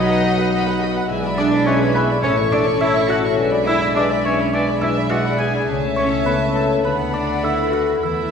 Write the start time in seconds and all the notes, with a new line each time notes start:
Already playing: B1 B2 F#3 B3 D#4 F#4 B4 D#5 F#5 D#6
0.08 B4 F#5 B5
0.14 B3
0.22 F#4 D#5 F#5 B5
0.33 F#4 F#5
0.37 B4 F#5 B5
0.51 B3 F#4 D#5 F#5 B5
0.66 B4 F#5 B5
0.72 B4
0.81 F#4 D#5 F#5 B5
0.91 F#4
0.95 B4 F#5 B5
1.09 B1 B2 G#3 E4 G#4 D5 E5 G#5
1.24 B4 D5 E5 B5
1.29 B3
1.38 D4 G#4 D5 E5 G#5 D6
1.48 E4
1.52 B4 D5 E5 B5
1.66 G#3 C#4 G#4 B4 C#5 D5 E5 G#5 C#6
1.81 B4 D5 E5 B5
1.85 B4
1.94 B3 G#4 B4 D5 E5 G#5 B5
2.04 E4
2.09 B4 D5 E5 B5
2.23 A1 A2 A3 C#4 A4 C#5 E5 A5 C#6
2.38 C#5 E5 C#6
2.43 A3
2.52 D4 A4 C#5 D5 E5 A5 D6
2.62 C#4
2.67 C#5 E5 C#6
2.80 A3 E4 A4 C#5 E5 A5 E6
2.96 C#5 E5 C#6
3.00 A4
3.09 F#4 A4 C#5 E5 F#5 A5 F#6
3.19 C#4
3.24 C#5 E5 C#6
3.38 B1 B2 G#3 D4 B4 D5 E5 G#5
3.52 D5 E5 B5
3.57 G#3
3.66 E4 B4 D5 E5 G#5 E6
3.76 D4
3.81 D5 E5 B5
3.95 G#3 D4 E4 B4 D5 E5 G#5 D6
4.10 D5 E5 B5
4.15 G#4
4.24 C#4 B4 C#5 D5 E5 G#5 C#6
4.34 D4
4.38 D5 E5 B5
4.53 B3 D4 B4 D5 E5 G#5 D6
4.67 D5 E5 B5
4.73 G#3
4.81 E4 B4 D5 E5 G#5 E6
4.91 D4 B5
4.95 D5 E5
5.09 G#3 E4 F#4 B4 D5 E5 F#5 G#5 F#6
5.25 D5 E5 B5
5.29 G#4
5.38 G#4 B4 D5 E5 G#5 G#6
5.49 D4
5.54 D5 E5 B5
5.68 C#2 C#3 A3 C#4 C#5 E5 A5
5.87 C#4
5.96 C#4 C#5 C#6
6.07 E4
6.25 A3 B3 A4 B4 C#5 E5 B5
6.46 C#5
6.54 A3 A4 A5
6.65 E4
6.83 D2 D3 A3 B3 D4 A4 B4 F#5 B5
7.04 B3
7.13 D4 D5 D6
7.23 F#4
7.42 A3 E4 A4 D5 E5 F#5 E6
7.63 B4
7.72 F#4 F#5 F#6
7.83 F#4
8.02 E2 E3 A3 B3 E4 A4 B4 E5 B5 E6
8.23 E4